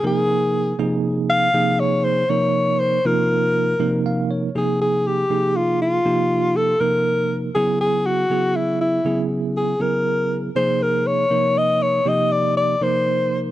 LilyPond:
<<
  \new Staff \with { instrumentName = "Alto saxophone" } { \time 6/8 \key des \lydian \tempo 4. = 80 aes'4. r4 f''8~ | f''8 des''8 c''8 des''4 c''8 | bes'2 r4 | aes'8 aes'8 g'4 f'8 f'8~ |
f'4 a'8 bes'4 r8 | aes'8 aes'8 ges'4 fes'8 fes'8~ | fes'8 r8 aes'8 bes'4 r8 | c''8 bes'8 des''4 ees''8 des''8 |
ees''8 d''8 d''8 c''4 r8 | }
  \new Staff \with { instrumentName = "Tine electric piano" } { \time 6/8 \key des \lydian r2. | r2. | r2 f''8 des''8 | r2. |
r2. | r2. | r2. | r2. |
r2. | }
  \new Staff \with { instrumentName = "Tine electric piano" } { \time 6/8 \key des \lydian <c f bes ees' bes'>4. <c f bes ees' aes'>4. | <c f bes ees' aes'>4. <c f bes ees' bes'>4. | <c f bes ees' f'>4. <c f bes ees' bes'>4. | <c f bes ees' aes'>4. <c f bes ees' aes'>4. |
<c f bes ees' g'>4. <c f bes ees' bes'>4. | <des ges ces' fes' aes'>4. <des ges ces' fes' aes'>4. | <des ges ces' fes' aes'>4. <des ges ces' fes' aes'>4. | <c f bes ees' aes'>4. <c f bes ees' bes'>4. |
<c f bes ees' g'>4. <c f bes ees' bes'>4. | }
>>